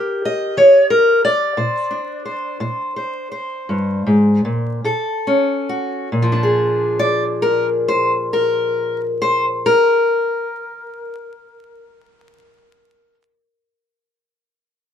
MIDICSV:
0, 0, Header, 1, 2, 480
1, 0, Start_track
1, 0, Tempo, 665188
1, 1134, Time_signature, 12, 3, 24, 8
1, 1134, Tempo, 696864
1, 2094, Tempo, 751880
1, 3054, Tempo, 809717
1, 3534, Tempo, 859599
1, 4014, Tempo, 890208
1, 8759, End_track
2, 0, Start_track
2, 0, Title_t, "Steel-string acoustic guitar"
2, 0, Program_c, 0, 25
2, 0, Note_on_c, 0, 51, 67
2, 0, Note_on_c, 0, 67, 48
2, 0, Note_on_c, 0, 70, 51
2, 128, Note_off_c, 0, 51, 0
2, 183, Note_on_c, 0, 75, 80
2, 413, Note_off_c, 0, 70, 0
2, 413, Note_on_c, 0, 51, 76
2, 416, Note_on_c, 0, 73, 83
2, 649, Note_off_c, 0, 73, 0
2, 652, Note_on_c, 0, 70, 84
2, 844, Note_off_c, 0, 51, 0
2, 892, Note_off_c, 0, 70, 0
2, 896, Note_off_c, 0, 75, 0
2, 899, Note_on_c, 0, 74, 100
2, 1110, Note_off_c, 0, 67, 0
2, 1133, Note_on_c, 0, 46, 77
2, 1137, Note_on_c, 0, 72, 46
2, 1364, Note_on_c, 0, 62, 44
2, 1559, Note_off_c, 0, 46, 0
2, 1596, Note_off_c, 0, 72, 0
2, 1604, Note_on_c, 0, 72, 45
2, 1840, Note_off_c, 0, 72, 0
2, 1844, Note_on_c, 0, 46, 69
2, 1848, Note_on_c, 0, 72, 46
2, 2085, Note_off_c, 0, 72, 0
2, 2093, Note_on_c, 0, 72, 47
2, 2278, Note_off_c, 0, 46, 0
2, 2310, Note_off_c, 0, 72, 0
2, 2317, Note_on_c, 0, 72, 47
2, 2557, Note_on_c, 0, 43, 62
2, 2794, Note_off_c, 0, 43, 0
2, 2796, Note_on_c, 0, 44, 65
2, 2810, Note_off_c, 0, 74, 0
2, 3038, Note_off_c, 0, 44, 0
2, 3041, Note_on_c, 0, 46, 59
2, 3258, Note_off_c, 0, 72, 0
2, 3260, Note_off_c, 0, 62, 0
2, 3274, Note_off_c, 0, 46, 0
2, 3276, Note_on_c, 0, 47, 67
2, 3281, Note_on_c, 0, 69, 68
2, 3529, Note_on_c, 0, 61, 55
2, 3716, Note_off_c, 0, 47, 0
2, 3766, Note_on_c, 0, 66, 56
2, 3980, Note_off_c, 0, 69, 0
2, 3982, Note_off_c, 0, 61, 0
2, 3982, Note_off_c, 0, 66, 0
2, 4004, Note_on_c, 0, 46, 61
2, 4060, Note_on_c, 0, 53, 59
2, 4113, Note_on_c, 0, 62, 57
2, 4172, Note_on_c, 0, 68, 58
2, 4475, Note_on_c, 0, 74, 91
2, 4600, Note_off_c, 0, 74, 0
2, 4706, Note_on_c, 0, 70, 82
2, 4835, Note_off_c, 0, 70, 0
2, 4956, Note_on_c, 0, 72, 78
2, 5080, Note_off_c, 0, 72, 0
2, 5196, Note_on_c, 0, 70, 76
2, 5553, Note_off_c, 0, 70, 0
2, 5674, Note_on_c, 0, 72, 90
2, 5799, Note_off_c, 0, 72, 0
2, 5913, Note_on_c, 0, 70, 92
2, 5927, Note_off_c, 0, 46, 0
2, 5983, Note_off_c, 0, 53, 0
2, 6036, Note_off_c, 0, 62, 0
2, 6095, Note_off_c, 0, 68, 0
2, 7790, Note_off_c, 0, 70, 0
2, 8759, End_track
0, 0, End_of_file